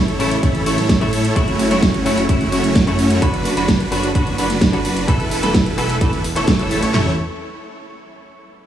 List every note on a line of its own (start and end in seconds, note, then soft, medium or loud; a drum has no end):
0.00 0.17 A1 loud
0.00 0.17 E4 medium
0.00 0.17 A4 medium
0.00 0.17 C#5 loud
0.00 0.17 C#6 loud
0.08 closed hi-hat soft
0.19 0.41 A1 loud
0.19 0.40 C#3 medium
0.19 0.40 E3 medium
0.19 0.40 A3 medium
0.19 0.37 E4 medium
0.19 0.41 E4 loud
0.19 0.37 A4 medium
0.19 0.37 C#5 medium
0.19 0.37 C#6 medium
0.19 open hi-hat medium
0.31 closed hi-hat medium
0.43 0.64 A1 loud
0.43 0.63 C#3 loud
0.43 0.63 E3 medium
0.43 0.64 A3 medium
0.43 0.63 E4 medium
0.43 0.64 E4 loud
0.43 0.63 A4 medium
0.43 0.63 C#5 medium
0.43 0.63 C#6 medium
0.43 kick loud
0.43 closed hi-hat medium
0.55 closed hi-hat soft
0.66 0.99 A1 medium
0.66 0.75 C#3 loud
0.66 0.75 E3 medium
0.66 0.76 A3 medium
0.66 0.98 E4 loud
0.66 0.76 E4 loud
0.66 0.98 A4 medium
0.66 0.98 C#5 loud
0.66 0.98 C#6 loud
0.66 open hi-hat loud
0.78 snare soft
0.78 closed hi-hat medium
0.89 kick loud
0.89 snare loud
0.89 closed hi-hat medium
1.00 1.34 A2 loud
1.00 1.07 C#3 medium
1.00 1.07 E3 medium
1.00 1.07 A3 medium
1.00 1.33 E4 medium
1.00 1.07 E4 loud
1.00 1.33 A4 medium
1.00 1.33 C#5 medium
1.00 1.33 C#6 medium
1.00 closed hi-hat soft
1.13 open hi-hat loud
1.25 closed hi-hat medium
1.35 1.69 F#1 loud
1.35 1.68 C#3 medium
1.35 1.68 F#3 medium
1.35 1.68 A3 loud
1.35 1.68 A3 medium
1.35 1.68 C#4 medium
1.35 1.68 E4 medium
1.35 1.68 E4 loud
1.35 1.68 F#4 loud
1.35 1.68 C#6 loud
1.35 kick loud
1.35 closed hi-hat medium
1.48 closed hi-hat soft
1.59 open hi-hat loud
1.70 2.04 F#1 loud
1.70 1.80 C#3 loud
1.70 1.80 F#3 medium
1.70 2.03 A3 medium
1.70 1.80 A3 medium
1.70 2.03 C#4 medium
1.70 2.03 E4 medium
1.70 1.80 E4 loud
1.70 2.03 F#4 medium
1.70 2.03 C#5 loud
1.70 2.03 C#6 loud
1.70 snare soft
1.70 closed hi-hat medium
1.82 kick loud
1.82 snare loud
1.82 closed hi-hat medium
1.94 closed hi-hat soft
2.05 2.27 F#1 medium
2.05 2.26 C#3 medium
2.05 2.26 F#3 medium
2.05 2.23 A3 medium
2.05 2.26 A3 medium
2.05 2.23 C#4 medium
2.05 2.23 E4 medium
2.05 2.27 E4 medium
2.05 2.23 F#4 medium
2.05 2.23 C#5 medium
2.05 2.23 C#6 medium
2.05 open hi-hat loud
2.18 closed hi-hat medium
2.29 2.50 F#1 loud
2.29 2.49 C#3 loud
2.29 2.50 F#3 medium
2.29 2.49 A3 medium
2.29 2.50 A3 medium
2.29 2.49 C#4 medium
2.29 2.49 E4 medium
2.29 2.50 E4 loud
2.29 2.49 F#4 medium
2.29 2.49 C#5 medium
2.29 2.49 C#6 medium
2.29 kick loud
2.29 closed hi-hat medium
2.41 closed hi-hat soft
2.52 2.85 F#1 loud
2.52 2.61 C#3 loud
2.52 2.61 F#3 medium
2.52 2.84 A3 medium
2.52 2.62 A3 medium
2.52 2.84 C#4 medium
2.52 2.84 E4 medium
2.52 2.62 E4 loud
2.52 2.84 F#4 medium
2.52 2.84 C#5 loud
2.52 2.84 C#6 loud
2.52 open hi-hat loud
2.64 closed hi-hat medium
2.75 kick loud
2.75 snare loud
2.75 closed hi-hat medium
2.87 3.20 F#2 loud
2.87 2.93 C#3 medium
2.87 2.93 F#3 medium
2.87 3.19 A3 medium
2.87 2.93 A3 medium
2.87 3.19 C#4 medium
2.87 3.19 E4 medium
2.87 2.93 E4 medium
2.87 3.19 F#4 medium
2.87 3.19 C#5 medium
2.87 3.19 C#6 medium
2.87 closed hi-hat soft
2.99 open hi-hat medium
3.10 closed hi-hat medium
3.21 3.55 F#1 loud
3.21 3.54 D3 medium
3.21 3.54 F#3 medium
3.21 3.54 B3 medium
3.21 3.54 D4 loud
3.21 3.54 F#4 loud
3.21 3.54 B4 loud
3.21 3.54 B5 loud
3.21 kick loud
3.21 closed hi-hat medium
3.34 closed hi-hat soft
3.45 open hi-hat loud
3.56 3.89 F#1 loud
3.56 3.66 D3 loud
3.56 3.66 F#3 medium
3.56 3.66 B3 medium
3.56 3.89 D4 medium
3.56 3.89 F#4 medium
3.56 3.66 F#4 loud
3.56 3.89 B4 loud
3.56 3.89 B5 loud
3.56 closed hi-hat medium
3.68 kick loud
3.68 snare loud
3.68 closed hi-hat medium
3.80 closed hi-hat soft
3.91 4.13 F#1 loud
3.91 4.12 D3 loud
3.91 4.12 F#3 medium
3.91 4.12 B3 medium
3.91 4.09 D4 medium
3.91 4.09 F#4 medium
3.91 4.13 F#4 medium
3.91 4.09 B4 medium
3.91 4.09 B5 medium
3.91 open hi-hat medium
4.03 closed hi-hat medium
4.14 4.36 F#1 loud
4.14 4.35 D3 loud
4.14 4.35 F#3 medium
4.14 4.36 B3 medium
4.14 4.36 D4 medium
4.14 4.36 F#4 medium
4.14 4.36 F#4 loud
4.14 4.36 B4 medium
4.14 4.36 B5 medium
4.14 kick loud
4.14 closed hi-hat medium
4.27 closed hi-hat soft
4.38 4.71 F#1 loud
4.38 4.47 D3 medium
4.38 4.47 F#3 medium
4.38 4.48 B3 medium
4.38 4.70 D4 medium
4.38 4.70 F#4 medium
4.38 4.48 F#4 loud
4.38 4.70 B4 loud
4.38 4.70 B5 loud
4.38 open hi-hat loud
4.50 snare soft
4.50 closed hi-hat medium
4.61 kick loud
4.61 snare loud
4.61 closed hi-hat medium
4.73 5.06 F#1 loud
4.73 4.79 D3 medium
4.73 4.79 F#3 medium
4.73 4.79 B3 medium
4.73 5.05 D4 medium
4.73 5.05 F#4 medium
4.73 4.79 F#4 medium
4.73 5.05 B4 medium
4.73 5.05 B5 medium
4.73 closed hi-hat soft
4.85 open hi-hat medium
4.96 closed hi-hat medium
5.08 5.41 E1 loud
5.08 5.40 E3 medium
5.08 5.40 A3 medium
5.08 5.40 B3 medium
5.08 5.40 E4 loud
5.08 5.40 A4 medium
5.08 5.41 A4 loud
5.08 5.40 B4 loud
5.08 5.40 B5 loud
5.08 kick loud
5.08 closed hi-hat medium
5.20 closed hi-hat soft
5.31 open hi-hat loud
5.42 5.76 E1 loud
5.42 5.52 E3 loud
5.42 5.52 A3 medium
5.42 5.52 B3 medium
5.42 5.75 E4 medium
5.42 5.75 A4 medium
5.42 5.52 A4 loud
5.42 5.75 B4 loud
5.42 5.75 B5 loud
5.42 snare soft
5.42 closed hi-hat medium
5.54 kick loud
5.54 snare loud
5.54 closed hi-hat medium
5.66 closed hi-hat soft
5.77 5.99 E1 loud
5.77 5.98 E3 medium
5.77 5.98 A3 medium
5.77 5.99 B3 medium
5.77 5.95 E4 medium
5.77 5.95 A4 medium
5.77 5.99 A4 loud
5.77 5.95 B4 medium
5.77 5.95 B5 medium
5.77 open hi-hat medium
5.90 closed hi-hat medium
6.01 6.34 E1 loud
6.01 6.21 E3 loud
6.01 6.22 A3 medium
6.01 6.22 B3 medium
6.01 6.22 E4 medium
6.01 6.22 A4 medium
6.01 6.22 A4 loud
6.01 6.22 B4 medium
6.01 6.22 B5 medium
6.01 kick loud
6.01 closed hi-hat medium
6.13 closed hi-hat soft
6.24 open hi-hat loud
6.36 6.80 E1 loud
6.36 6.56 E3 medium
6.36 6.56 A3 medium
6.36 6.57 B3 medium
6.36 6.80 E4 medium
6.36 6.80 A4 medium
6.36 6.57 A4 medium
6.36 6.80 C#5 loud
6.36 6.80 C#6 loud
6.36 closed hi-hat medium
6.47 kick loud
6.47 snare loud
6.47 closed hi-hat medium
6.59 6.68 E3 loud
6.59 6.68 A3 medium
6.59 6.68 B3 medium
6.59 6.68 A4 loud
6.59 closed hi-hat soft
6.70 6.91 A2 loud
6.70 6.91 E3 medium
6.70 6.91 A3 loud
6.70 6.92 B3 medium
6.70 6.92 A4 loud
6.70 open hi-hat medium
6.83 6.92 A1 loud
6.83 6.91 E4 medium
6.83 6.91 A4 medium
6.83 6.91 C#5 loud
6.83 6.91 C#6 medium
6.83 closed hi-hat medium
6.93 7.16 A1 loud
6.93 7.11 C#3 medium
6.93 7.11 E3 medium
6.93 7.12 A3 medium
6.93 7.11 E4 medium
6.93 7.13 E4 medium
6.93 7.11 A4 medium
6.93 7.11 C#5 medium
6.93 7.11 C#6 loud
6.93 snare loud
6.93 clap medium
6.93 floor tom loud